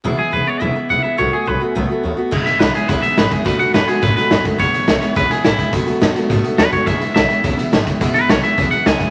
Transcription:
<<
  \new Staff \with { instrumentName = "Clean electric guitar" } { \time 4/4 \key e \major \tempo 4 = 211 r8 gis'8 b'8 cis''8 e''4 fis''8 e''8 | cis''8 gis'8 b'8 r2 r8 | r8 e''8 b'8 gis'8 b'8 e''8 b'8 gis'8 | b'8 fis''8 b'8 gis'8 b'8 b'4 r8 |
cis''2 b'8 gis'8 e'4 | r2. b'8 cis''8 | e''4 e''2. | r8 b'8 cis''8 e''4 fis''8 gis''4 | }
  \new Staff \with { instrumentName = "Steel-string acoustic guitar" } { \time 4/4 \key e \major <e, b, e gis b e'>8 <e gis b e'>8 <e gis b e'>8 <e gis b e'>8 <e, b, e gis b e'>8 <e gis b e'>8 <e gis b e'>8 <e gis b e'>8 | <b, dis a b fis'>8 <a b fis'>8 <dis a b fis'>8 <a b fis'>8 <b, dis a b fis'>8 <a b fis'>8 <dis a b fis'>8 <a b fis'>8 | <e, b, e gis b e'>8 <e gis b e'>8 <e gis b e'>8 <e gis b e'>8 <e, b, e gis b e'>8 <e gis b>8 <e gis b e'>8 <e gis b e'>8 | <b, dis a b fis'>8 <a b fis'>8 <dis a b fis'>8 <a b fis'>8 <b, dis a b fis'>8 <a b fis'>8 <dis a b fis'>8 <a b fis'>8 |
<e, b, e gis b e'>8 <e gis b e'>8 <e gis b e'>8 <e gis b e'>8 <e, b, e gis b e'>8 <e gis b e'>8 <e gis b e'>8 <e gis b e'>8 | <b, dis a b fis'>8 <a b fis'>8 <dis a b fis'>8 <a b fis'>8 <b, dis a b fis'>8 <a b fis'>8 dis8 <a b fis'>8 | <e, b, e gis b e'>8 <e gis b e'>8 <e gis b e'>8 <e gis b e'>8 <e, b, e gis b e'>8 <e gis b e'>8 <e gis b e'>8 <e gis b e'>8 | <e, b, e gis b e'>8 <e gis b e'>8 <e gis b e'>8 <e gis b e'>8 <e, b, e gis b e'>8 <e gis b e'>8 <e gis b e'>8 <e gis b e'>8 | }
  \new Staff \with { instrumentName = "Upright bass" } { \clef bass \time 4/4 \key e \major e,,8 r8 e,,8 r8 e,,8 r8 e,,8 r8 | b,,8 r8 b,,8 r8 b,,8 r8 dis,8 r8 | e,,8 gis,,8 b,,8 r8 cis,8 r8 gis,,8 r8 | b,,8 dis,8 fis,8 r8 gis,8 r8 fis,8 r8 |
e,,8 gis,,8 b,,8 r8 cis,8 r8 a,,8 r8 | b,,8 dis,8 fis,8 r8 gis,8 r8 dis,8 r8 | e,,8 gis,,8 b,,8 r8 cis,8 r8 gis,,8 r8 | e,,8 gis,,8 b,,8 r8 cis,8 r8 cis,8 r8 | }
  \new DrumStaff \with { instrumentName = "Drums" } \drummode { \time 4/4 r4 r4 r4 r4 | r4 r4 r4 r4 | <cymc bd>8 <hh sn>8 <hh sn>8 hh8 <hh bd sn>8 hh8 <hh sn>8 <hh bd>8 | <hh bd sn>8 hh8 <hh sn>8 hh8 <hh bd>8 <hh sn>8 <hh sn>8 <hh bd>8 |
<hh bd>8 hh8 <hh sn>8 hh8 <hh bd>8 <hh sn>8 <hh sn>8 <hh bd>8 | <hh bd>8 hh8 <hh sn>8 hh8 <hh bd>8 hh8 <hh sn>8 <hh bd>8 | <hh bd sn>8 hh8 <hh sn>8 hh8 <hh bd>8 hh8 <hh sn>8 <hh bd>8 | <hh bd sn>8 hh8 <hh sn>8 hh8 <hh bd>8 hh8 <hh sn>8 <hh bd>8 | }
>>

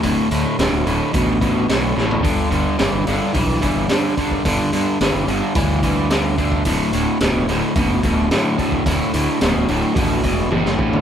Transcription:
<<
  \new Staff \with { instrumentName = "Distorted electric guitar" } { \clef bass \time 4/4 \key g \lydian \tempo 4 = 109 <d, a,>8 <d, a,>8 <d, b,>8 <d, a,>8 <d, b,>8 <d, b,>8 <d, a,>8 <d, a,>8 | <g, d>8 <g, d>8 <g, e>8 <g, d>8 <g, e>8 <g, e>8 <g, d>8 <g, d>8 | <g, d>8 <g, d>8 <g, e>8 <g, d>8 <g, e>8 <g, e>8 <g, d>8 <g, d>8 | <d, a,>8 <d, a,>8 <d, b,>8 <d, a,>8 <d, b,>8 <d, b,>8 <d, a,>8 <d, a,>8 |
<d, a,>8 <d, a,>8 <d, b,>8 <d, a,>8 <d, b,>8 <d, b,>8 <d, a,>8 <d, a,>8 | }
  \new Staff \with { instrumentName = "Fingered electric bass" } { \clef bass \time 4/4 \key g \lydian d,,16 r16 d,16 r16 d,,16 d,,16 d,,16 r16 a,,4 b,,8 a,,8 | g,,16 r16 g,,16 r16 g,,16 g,,16 g,,16 r16 b,,8 g,,8 r4 | g,,16 r16 g,16 r16 g,,16 g,,16 g,,16 r16 d,2 | d,,16 r16 d,,16 r16 d,,16 d,,16 d,,16 r16 fis,,8 d,,8 r4 |
d,,16 r16 d,16 r16 d,,16 d,,16 d,,16 r16 a,,8 e,,8 fis,,8 a,,8 | }
  \new DrumStaff \with { instrumentName = "Drums" } \drummode { \time 4/4 <hho bd>8 hho8 <hho sn>8 hho8 <hho bd>8 <hho bd>8 <hho sn>8 sn16 tomfh16 | <hho bd>8 hho8 <hho sn>8 <hho sn>8 <hho bd>8 <hho bd>8 <hho sn>8 <hho bd>16 bd16 | <hho bd>8 hho8 <hho sn>8 hho8 <hho bd>8 <hho bd>8 <hho sn>8 <hho bd>16 bd16 | <hho bd>8 hho8 <hho sn>8 <hho sn>8 <hho bd>8 <hho bd>8 <hho sn>8 <hho bd>16 bd16 |
<hho bd>8 hho8 <hho sn>8 hho8 <hho bd>8 <hho bd>8 tommh16 sn16 bd16 tomfh16 | }
>>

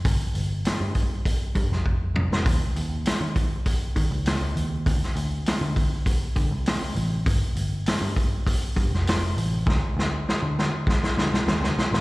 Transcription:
<<
  \new Staff \with { instrumentName = "Picked electric bass" } { \clef bass \time 4/4 \key d \phrygian \tempo 4 = 100 g,,16 r16 g,,8 r16 g,8 r8. g,16 f,,8. f,,8 | dis,16 r16 dis,8 r16 dis8 r8. dis16 cis,8. dis,8 | d,16 r16 d,8 r16 d8 r8. d16 c,8. a,,8 | g,,16 r16 g,,8 r16 g,8 r8. g,16 f,,8. a,,8 |
d,16 r16 d,8 r16 d8 r8. d16 c,16 ees,16 d,16 c,16 a,,16 | }
  \new DrumStaff \with { instrumentName = "Drums" } \drummode { \time 4/4 <hho bd>8 hho8 <hho sn>8 <hho bd>8 <hho bd>8 <hho bd>16 sn16 bd8 toml16 sn16 | <hho bd>8 hho8 <hho sn>8 <hho bd>8 <hho bd>8 <hho bd>8 <hho sn>8 hho8 | <hho bd>16 sn16 hho8 <hho sn>8 <hho bd>8 <hho bd>8 <hho bd>8 <hho sn>8 hho8 | <hho bd>8 hho8 <hho sn>8 <hho bd>8 <hho bd>8 <hho bd>16 sn16 <hho sn>8 hho8 |
<bd sn>8 sn8 sn8 sn8 <bd sn>16 sn16 sn16 sn16 sn16 sn16 sn16 sn16 | }
>>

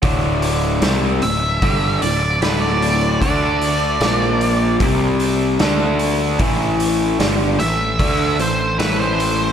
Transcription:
<<
  \new Staff \with { instrumentName = "Lead electric guitar" } { \time 4/4 \key a \mixolydian \tempo 4 = 75 r4. e''4 d''8 b'16 d''8. | d''2 r2 | r4. e''4 c''8 b'16 c''8. | }
  \new Staff \with { instrumentName = "Overdriven electric guitar" } { \clef bass \time 4/4 \key a \mixolydian <d, a, d>4 <c g c'>8 <d, a,>8 <g, d g>8 <d, a,>8 <d, a, d>4 | <d a d'>4 <bes, f bes>4 <c g c'>4 <d a d'>4 | <a, e a>4 <g, d g>8 <a, e>8 <d a d'>8 <a, e>8 <a, e a>4 | }
  \new Staff \with { instrumentName = "Picked electric bass" } { \clef bass \time 4/4 \key a \mixolydian d,,4 c,8 d,,8 g,,8 d,,8 d,,4 | d,4 bes,,4 c,4 d,4 | a,,4 g,,8 a,,8 d,8 a,,8 a,,4 | }
  \new DrumStaff \with { instrumentName = "Drums" } \drummode { \time 4/4 <hho bd>8 hho8 <hho sn>8 hho8 <hho bd>8 hho8 <hho sn>8 hho8 | <hho bd>8 hho8 <hho sn>8 hho8 <hho bd>8 hho8 <hho sn>8 hho8 | <hho bd>8 hho8 <hho sn>8 hho8 <hho bd>8 hho8 <hho sn>8 hho8 | }
>>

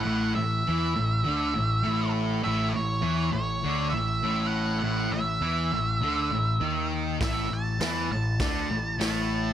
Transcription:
<<
  \new Staff \with { instrumentName = "Lead electric guitar" } { \time 4/4 \key a \major \tempo 4 = 101 fis''8 e''2. r8 | e''8 cis''4 cis''4 e''4 fis''8 | fis''8 e''2. r8 | e''8 a''4 a''4. a''4 | }
  \new Staff \with { instrumentName = "Distorted electric guitar" } { \clef bass \time 4/4 \key a \major a,8 a,8 e8 a,8 d8 a,8 a,4 | a,8 a,8 e8 a,8 d8 a,8 a,4 | a,8 a,8 e8 a,8 d8 a,8 dis4 | a,8 a,8 e8 a,8 d8 a,8 a,4 | }
  \new Staff \with { instrumentName = "Picked electric bass" } { \clef bass \time 4/4 \key a \major a,,8 a,,8 e,8 a,,8 d,8 a,,8 a,,4 | a,,8 a,,8 e,8 a,,8 d,8 a,,8 a,,4 | a,,8 a,,8 e,8 a,,8 d,8 a,,8 dis,4 | a,,8 a,,8 e,8 a,,8 d,8 a,,8 a,,4 | }
  \new DrumStaff \with { instrumentName = "Drums" } \drummode { \time 4/4 r4 r4 r4 r4 | r4 r4 r4 r4 | r4 r4 r4 r4 | <hho bd sn>4 <hho sn>4 <hho bd sn>4 <hho sn>4 | }
>>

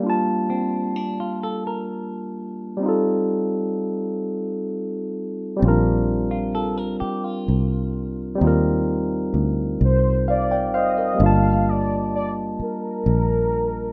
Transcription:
<<
  \new Staff \with { instrumentName = "Soft synth lead" } { \time 6/8 \key g \minor \tempo 4. = 43 r2. | r2. | r2. | r4. c''8 d''8 ees''8 |
f''8 d''8 d''8 bes'4. | }
  \new Staff \with { instrumentName = "Clean electric guitar" } { \time 6/8 \key g \minor r8 c'8 d'16 f'16 a'16 bes'4~ bes'16 | r2. | r8. f'16 a'16 bes'16 g'16 f'4~ f'16 | r2. |
r2. | }
  \new Staff \with { instrumentName = "Tine electric piano" } { \time 6/8 \key g \minor << { r2. | r2. | r2. | r2 <c'' f''>16 <d'' g''>16 <c'' f''>16 <bes' ees''>16~ |
<bes' ees''>16 r2 r8. | } \\ { <g bes d' f' a''>2. | <g c' ees' f' a'>2. | <g c' cis' d' f' bes'>2. | <g c' ees' f' bes'>2. |
<g bes d' f' a''>2. | } >> }
  \new Staff \with { instrumentName = "Fingered electric bass" } { \clef bass \time 6/8 \key g \minor r2. | r2. | bes,,4. r8 c,4 | ees,4 d,8 c,4 fis,,8 |
g,,4. r8 bes,,4 | }
>>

